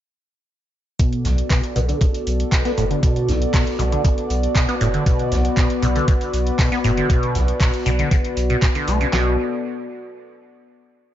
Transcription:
0.99 1.26 B2 medium
0.99 9.09 B3 medium
0.99 9.09 F#4 medium
0.99 5.02 A4 medium
0.99 9.09 D5 medium
0.99 kick loud
0.99 closed hi-hat medium
1.13 closed hi-hat soft
1.24 1.42 B1 loud
1.24 1.36 B1 medium
1.24 snare medium
1.24 closed hi-hat medium
1.24 open hi-hat loud
1.38 closed hi-hat soft
1.50 1.61 B2 medium
1.50 kick loud
1.50 snare loud
1.50 clap loud
1.50 closed hi-hat medium
1.64 closed hi-hat soft
1.76 1.93 B1 medium
1.76 1.80 B2 loud
1.76 closed hi-hat medium
1.76 open hi-hat loud
1.88 1.99 D3 medium
1.88 closed hi-hat soft
2.01 2.06 C#3 medium
2.01 kick loud
2.01 closed hi-hat medium
2.14 closed hi-hat soft
2.27 2.44 B1 medium
2.27 closed hi-hat medium
2.27 open hi-hat loud
2.40 closed hi-hat soft
2.52 2.63 B2 medium
2.52 kick loud
2.52 snare loud
2.52 clap loud
2.52 closed hi-hat medium
2.65 2.72 B3 loud
2.65 snare medium
2.65 closed hi-hat soft
2.77 2.95 F#1 medium
2.77 2.85 A2 medium
2.77 closed hi-hat medium
2.77 open hi-hat loud
2.90 3.01 D3 medium
2.90 closed hi-hat soft
3.03 3.30 B2 medium
3.03 kick loud
3.03 closed hi-hat medium
3.16 closed hi-hat soft
3.28 3.39 B1 medium
3.28 3.45 B1 medium
3.28 snare medium
3.28 closed hi-hat medium
3.28 open hi-hat loud
3.42 closed hi-hat soft
3.53 3.64 B2 medium
3.53 kick loud
3.53 snare loud
3.53 clap loud
3.53 closed hi-hat medium
3.53 open hi-hat medium
3.67 closed hi-hat soft
3.79 3.96 B1 medium
3.79 3.83 B2 loud
3.79 closed hi-hat medium
3.79 open hi-hat loud
3.92 4.02 D3 medium
3.92 closed hi-hat soft
4.04 4.09 C#3 medium
4.04 kick loud
4.04 closed hi-hat medium
4.18 closed hi-hat soft
4.30 4.47 B1 medium
4.30 closed hi-hat medium
4.30 open hi-hat loud
4.43 closed hi-hat soft
4.55 4.66 B2 medium
4.55 kick loud
4.55 snare loud
4.55 clap loud
4.55 closed hi-hat medium
4.68 4.75 B3 loud
4.68 closed hi-hat soft
4.81 4.98 F#1 medium
4.81 4.88 A2 medium
4.81 closed hi-hat medium
4.81 open hi-hat loud
4.94 5.04 D3 medium
4.94 closed hi-hat soft
5.06 5.33 B2 medium
5.06 9.09 B4 medium
5.06 kick loud
5.06 closed hi-hat medium
5.19 closed hi-hat soft
5.32 5.43 B1 medium
5.32 5.49 B1 medium
5.32 snare medium
5.32 closed hi-hat medium
5.32 open hi-hat loud
5.45 closed hi-hat soft
5.57 5.68 B2 medium
5.57 kick loud
5.57 snare loud
5.57 clap loud
5.57 closed hi-hat medium
5.70 closed hi-hat soft
5.82 6.00 B1 medium
5.82 5.87 B2 loud
5.82 closed hi-hat medium
5.82 open hi-hat loud
5.96 6.06 D3 medium
5.96 closed hi-hat soft
6.08 6.12 C#3 medium
6.08 kick loud
6.08 closed hi-hat medium
6.21 closed hi-hat soft
6.33 6.51 B1 medium
6.33 closed hi-hat medium
6.33 open hi-hat loud
6.47 closed hi-hat soft
6.59 6.70 B2 medium
6.59 kick loud
6.59 snare loud
6.59 clap loud
6.59 closed hi-hat medium
6.72 6.79 B3 loud
6.72 snare medium
6.72 closed hi-hat soft
6.84 7.01 F#1 medium
6.84 6.91 A2 loud
6.84 closed hi-hat medium
6.84 open hi-hat loud
6.97 7.08 D3 medium
6.97 closed hi-hat soft
7.10 7.37 B2 medium
7.10 kick loud
7.10 closed hi-hat medium
7.23 closed hi-hat soft
7.35 7.46 B1 medium
7.35 7.52 B1 medium
7.35 snare soft
7.35 closed hi-hat medium
7.35 open hi-hat loud
7.48 closed hi-hat soft
7.60 7.71 B2 medium
7.60 kick loud
7.60 snare loud
7.60 clap loud
7.60 closed hi-hat medium
7.60 open hi-hat medium
7.74 closed hi-hat soft
7.86 8.03 B1 medium
7.86 7.90 B2 loud
7.86 closed hi-hat medium
7.86 open hi-hat loud
7.99 8.09 D3 medium
7.99 closed hi-hat soft
8.11 8.16 C#3 medium
8.11 kick loud
8.11 closed hi-hat medium
8.24 closed hi-hat soft
8.37 8.54 B1 medium
8.37 closed hi-hat medium
8.37 open hi-hat loud
8.50 8.57 B2 medium
8.50 closed hi-hat soft
8.62 8.67 B2 loud
8.62 kick loud
8.62 snare loud
8.62 clap loud
8.62 closed hi-hat medium
8.75 8.89 D3 medium
8.75 closed hi-hat soft
8.88 9.05 B1 medium
8.88 8.98 A3 medium
8.88 closed hi-hat medium
8.88 open hi-hat loud
9.01 9.08 C#3 medium
9.01 open hi-hat medium
9.13 9.37 B1 loud
9.13 9.37 B2 medium
9.13 9.37 B3 medium
9.13 9.37 F#4 medium
9.13 9.37 A4 medium
9.13 9.37 D5 medium
9.13 snare loud
9.13 clap medium

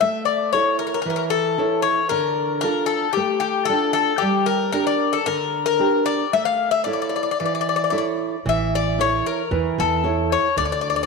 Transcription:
0.01 0.52 A3 medium
0.01 0.25 E5 medium
0.25 0.51 D5 medium
0.53 0.96 E4 soft
0.53 0.96 A4 soft
0.53 0.79 C#5 medium
0.53 0.96 C#5 medium
0.79 0.86 A#4 medium
0.87 0.93 A#4 medium
0.94 1.01 A#4 medium
1.02 1.57 E3 medium
1.02 1.09 A#4 medium
1.10 1.15 A#4 medium
1.16 1.24 A#4 medium
1.30 1.82 A4 medium
1.58 2.01 E4 medium
1.58 2.01 A4 soft
1.58 2.01 C#5 soft
1.82 2.08 C#5 medium
2.09 2.63 D3 medium
2.09 2.60 A#4 medium
2.61 3.06 D4 soft
2.61 3.06 F4 soft
2.61 3.07 A4 medium
2.61 2.86 A#4 medium
2.86 3.13 A4 medium
3.13 3.68 A3 medium
3.13 3.39 G4 medium
3.40 3.66 G4 medium
3.65 4.12 D4 medium
3.65 3.92 A4 medium
3.70 4.12 F4 soft
3.70 4.12 A4 medium
3.93 4.22 A4 medium
4.18 4.73 G3 medium
4.18 4.45 G4 medium
4.46 4.71 A#4 medium
4.72 5.16 D4 soft
4.72 5.17 G4 soft
4.72 4.86 A#4 medium
4.72 5.17 A#4 medium
4.87 5.15 D5 medium
5.13 5.26 A4 medium
5.26 5.79 D3 medium
5.26 5.64 A#4 loud
5.66 6.05 A#4 medium
5.79 6.23 D4 soft
5.79 6.23 G4 soft
5.79 6.23 A#4 medium
6.06 6.33 D5 loud
6.33 6.85 A3 medium
6.33 6.45 E5 medium
6.45 6.71 F5 medium
6.71 6.84 E5 medium
6.84 7.29 E4 soft
6.84 7.29 A4 soft
6.84 7.30 C#5 medium
6.84 6.92 D5 medium
6.93 7.01 D5 medium
7.02 7.08 D5 medium
7.09 7.15 D5 medium
7.16 7.22 D5 medium
7.23 7.30 D5 medium
7.31 7.39 D5 medium
7.40 7.91 E3 medium
7.40 7.44 D5 medium
7.46 7.53 D5 medium
7.55 7.60 D5 medium
7.61 7.68 D5 medium
7.69 7.75 D5 medium
7.76 7.83 D5 medium
7.84 7.89 D5 soft
7.90 8.35 E4 soft
7.90 8.35 A4 soft
7.90 8.35 C#5 soft
7.90 7.97 D5 medium
7.98 8.05 D5 medium
8.46 9.20 A1 medium
8.46 8.97 E3 medium
8.46 8.75 E5 medium
8.75 8.99 D5 medium
8.98 9.41 E4 soft
8.98 9.41 A4 soft
8.98 9.42 C#5 medium
8.98 9.24 C#5 medium
9.26 9.75 A#4 medium
9.51 9.70 E2 medium
9.51 10.03 E3 medium
9.78 10.34 E2 medium
9.78 10.34 A4 medium
10.04 10.47 E4 medium
10.04 10.47 A4 soft
10.04 10.47 C#5 medium
10.32 10.57 C#5 medium
10.56 11.06 D2 medium
10.56 11.06 D3 medium
10.56 10.64 D5 loud
10.65 10.71 D5 medium
10.72 10.80 D5 medium
10.81 10.88 D5 medium
10.90 10.95 D5 medium
10.96 11.02 D5 medium
11.03 11.06 D5 medium

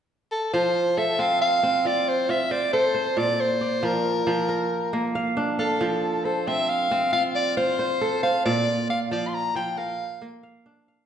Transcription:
0.32 0.52 A4 medium
0.53 2.87 F3 medium
0.53 0.99 C5 medium
0.97 2.29 A4 medium
0.97 1.21 E5 medium
1.19 1.63 C4 medium
1.19 1.41 F5 medium
1.42 1.88 F5 medium
1.63 3.43 C4 medium
1.85 2.29 F4 medium
1.85 2.10 D5 medium
2.08 2.32 C5 medium
2.29 3.80 F4 medium
2.29 2.53 E5 medium
2.51 2.94 C5 medium
2.51 2.72 D5 medium
2.73 3.23 A4 medium
2.73 3.19 C5 medium
2.94 4.13 C5 medium
3.17 5.51 A#2 medium
3.17 3.42 D5 medium
3.40 3.86 C5 medium
3.61 4.72 D5 soft
3.83 4.26 F3 medium
3.83 5.16 A#4 medium
4.27 5.79 F3 medium
4.49 5.76 A#4 medium
4.93 6.31 A#3 medium
5.15 5.58 F5 medium
5.37 7.05 D4 medium
5.59 6.26 A4 medium
5.59 6.59 F5 medium
5.81 8.15 F3 medium
6.25 7.57 A4 soft
6.25 6.49 C5 medium
6.47 6.91 C4 medium
6.47 6.71 E5 medium
6.69 7.12 F5 medium
6.91 8.71 C4 medium
7.13 7.57 F4 medium
7.13 7.23 F5 medium
7.36 7.56 D5 medium
7.57 9.08 F4 medium
7.57 8.19 C5 medium
7.79 8.23 C5 medium
8.01 8.52 A4 medium
8.23 9.42 C5 medium
8.23 8.44 F5 medium
8.46 10.80 A#2 medium
8.46 8.86 D5 medium
8.89 10.00 D5 soft
8.89 9.00 F5 medium
9.11 9.54 F3 medium
9.11 9.29 D5 medium
9.28 9.36 C6 medium
9.34 9.56 A#5 medium
9.55 11.06 F3 medium
9.55 9.79 G5 medium
9.78 11.05 A#4 medium
9.78 10.27 F5 medium
10.22 11.06 A#3 medium
10.43 10.88 F5 medium
10.66 11.06 D4 medium
10.88 11.06 F5 medium

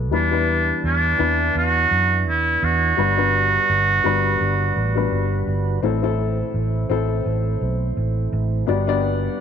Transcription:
0.00 0.12 B1 loud
0.00 0.14 A3 medium
0.00 0.12 B3 medium
0.00 0.12 D4 medium
0.00 0.14 F#4 medium
0.00 0.13 A4 loud
0.00 0.13 B4 medium
0.11 0.71 E2 loud
0.11 1.15 E3 medium
0.11 2.95 E3 medium
0.11 0.27 G3 medium
0.11 0.27 B3 medium
0.11 2.95 B3 medium
0.11 0.27 D4 medium
0.11 5.79 D4 medium
0.11 0.80 D4 medium
0.11 0.27 E4 medium
0.11 2.95 E4 medium
0.11 0.28 B4 medium
0.31 0.99 G3 medium
0.31 0.99 B3 medium
0.31 0.99 D4 medium
0.31 1.00 E4 medium
0.31 1.00 B4 medium
0.84 1.13 E2 medium
0.84 1.52 D4 loud
1.18 1.49 E2 loud
1.18 2.27 E3 medium
1.18 2.28 B3 medium
1.18 2.28 D4 medium
1.18 2.28 E4 medium
1.18 2.28 B4 medium
1.55 1.84 E2 medium
1.55 2.23 F#4 loud
1.91 2.27 F#2 loud
2.27 2.56 E2 loud
2.27 2.65 E4 medium
2.63 2.92 E2 loud
2.63 5.48 F#4 loud
2.97 3.56 G1 loud
2.97 4.01 G2 medium
2.97 3.13 G3 medium
2.97 5.81 G3 medium
2.97 3.13 B3 medium
2.97 3.13 D4 medium
2.97 3.13 F#4 medium
2.97 5.81 F#4 medium
2.97 5.81 B4 medium
2.97 3.13 B4 medium
3.17 3.85 G3 medium
3.17 3.85 B3 medium
3.17 3.85 D4 medium
3.17 3.85 F#4 medium
3.17 3.85 B4 medium
3.69 3.98 G1 loud
4.04 4.34 G1 loud
4.04 4.72 G3 medium
4.04 4.73 B3 medium
4.04 4.73 D4 medium
4.04 4.73 F#4 medium
4.04 4.73 B4 loud
4.41 4.70 G1 loud
4.76 5.05 A1 medium
4.95 5.63 G3 medium
4.95 5.63 B3 medium
4.95 5.63 D4 medium
4.95 5.64 F#4 medium
4.95 5.64 B4 medium
5.12 5.41 G1 loud
5.47 5.77 G1 loud
5.83 6.41 A1 loud
5.83 6.86 A2 medium
5.83 8.66 A3 medium
5.83 5.98 C4 medium
5.83 8.66 C4 medium
5.83 8.66 E4 medium
5.83 5.99 E4 medium
5.83 5.99 A4 loud
6.02 6.70 C4 medium
6.02 6.71 E4 medium
6.02 6.71 A4 loud
6.54 6.83 A1 medium
6.90 7.19 A1 loud
6.90 7.99 C4 loud
6.90 7.99 E4 medium
6.90 7.99 A4 loud
7.26 7.55 A1 loud
7.61 7.91 B1 medium
7.97 8.26 A1 loud
8.33 8.62 A1 loud
8.67 9.27 G1 loud
8.67 9.40 G2 medium
8.67 9.40 G3 medium
8.67 8.83 B3 medium
8.67 8.83 D4 medium
8.67 9.40 D4 medium
8.67 8.83 F#4 medium
8.67 8.84 G4 medium
8.67 9.40 B4 medium
8.67 8.84 D5 medium
8.67 9.40 F#5 medium
8.87 9.40 B3 loud
8.87 9.40 D4 medium
8.87 9.40 F#4 medium
8.87 9.40 G4 medium
8.87 9.40 D5 loud

